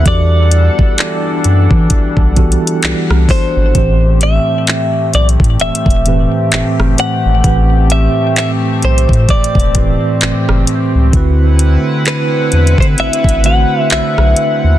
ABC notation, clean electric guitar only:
X:1
M:4/4
L:1/16
Q:"Swing 16ths" 1/4=65
K:Ador
V:1 name="Clean electric guitar"
d12 z2 c2- | c2 e4 d2 e6 f2- | f2 e2 e2 c2 d6 z2 | z4 B3 c e2 f2 e4 |]